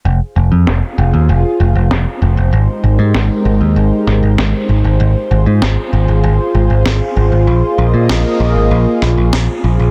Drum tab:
SD |--o---o-|--o--oo-|--o---o-|--o--oo-|